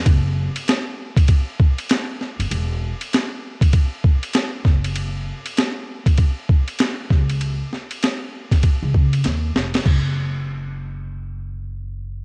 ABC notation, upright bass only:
X:1
M:4/4
L:1/16
Q:"Swing 16ths" 1/4=98
K:C#m
V:1 name="Upright bass" clef=bass
F,,,3 z12 F,,, | E,,,3 z8 z3 F,,,2- | F,,,3 z8 z3 C,,2- | C,,2 z6 z C,, C,2 D,,2 ^E,,,2 |
F,,,16 |]